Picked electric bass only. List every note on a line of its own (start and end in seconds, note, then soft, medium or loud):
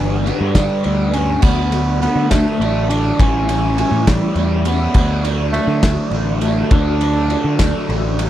0.00 0.30 G1 loud
0.41 0.53 G2 medium
0.55 0.68 G1 loud
0.86 1.36 D2 medium
1.43 2.06 D2 loud
2.16 2.29 D3 medium
2.32 2.44 D2 loud
2.60 3.10 A1 medium
3.20 3.82 A1 loud
3.91 4.04 A2 loud
4.07 4.20 A1 loud
4.36 4.86 E2 medium
4.95 5.58 D2 loud
5.67 5.80 D3 loud
5.83 5.95 D2 loud
6.11 6.62 A1 medium
6.71 7.34 D2 loud
7.45 7.57 D3 medium
7.59 7.72 D2 loud
7.89 8.30 A1 medium